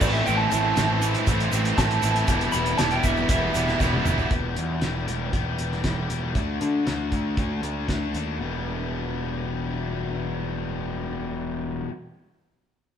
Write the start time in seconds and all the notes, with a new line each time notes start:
0.01 A1 E3 A3 C4 E4 C5 D5, kick, crash, shaker
0.05 A2
0.13 E5, shaker
0.26 A1 A2 E3 A3 C4 E4 G5, shaker
0.37 A5
0.50 A1 A2 E3 C4 E4 A5, closed hi-hat, shaker
0.54 A3
0.76 A1 A2 E3 A3 C4 E4, snare, closed hi-hat, shaker
1.02 A2 E3 A3 C4 E4, closed hi-hat, shaker
1.14 closed hi-hat, shaker
1.26 A1 A2 E3 A3 C4 E4, kick, closed hi-hat, shaker
1.40 closed hi-hat
1.51 A1 A2 E3 A3 C4 E4, closed hi-hat, shaker
1.56 A2
1.65 closed hi-hat, shaker
1.77 A1 A2 E3 A3 C4 E4 A5, kick, snare, closed hi-hat, shaker
1.91 closed hi-hat
2.02 A1 A2 E3 A3 C4 E4, closed hi-hat, shaker
2.15 closed hi-hat, shaker
2.27 E1 E2 B2 E3 G3 B3 E4 B4, kick, closed hi-hat, shaker
2.41 closed hi-hat
2.52 E1 E3 G3 B3 E4 B5, closed hi-hat, shaker
2.66 closed hi-hat, shaker
2.77 E1 E2 B2 E3 G3 B3 E4 A5, snare, closed hi-hat, shaker
2.91 G5, closed hi-hat
3.03 E1 E3 G3 B3 E4 E5, kick, closed hi-hat, shaker
3.17 shaker
3.28 E1 E3 G3 B3 E4 E5, kick, closed hi-hat, shaker
3.54 E1 E2 B2 E3 G3 B3 E4, closed hi-hat, shaker
3.68 snare, shaker
3.78 E1 E3 G3 B3 E4, kick, snare, shaker
3.93 high tom
4.04 E1 E3 G3 B3 E4, mid tom, shaker
4.18 floor tom, shaker
4.29 E1 E2 B2 E3 G3 B3 G4, kick, closed hi-hat
4.56 E2, closed hi-hat
4.80 E1 E2 B2 E3 G3 B3 G4, snare, closed hi-hat
5.07 E1 E3 G3 B3 G4, closed hi-hat
5.31 E1 E3 G3 B3 G4, kick, closed hi-hat
5.58 E1, closed hi-hat
5.72 snare
5.82 E1 E3 G3 B3 G4, kick, snare, closed hi-hat
6.08 E1 E3 G3 B3 G4, closed hi-hat
6.34 D2 D3 A3 D4 F#4, kick, closed hi-hat
6.61 D3, closed hi-hat
6.85 D2 D3 A3 D4 F#4, snare, closed hi-hat
7.11 D2 A3 D4 F#4, kick, closed hi-hat
7.36 D2 D3 A3 D4 F#4, kick, closed hi-hat
7.62 D2, closed hi-hat
7.88 D2 D3 A3 D4 F#4, kick, snare, closed hi-hat
8.13 D#2 A3 D4 F#4, closed hi-hat
8.38 E1 E2 B2 E3 G3 B3 E4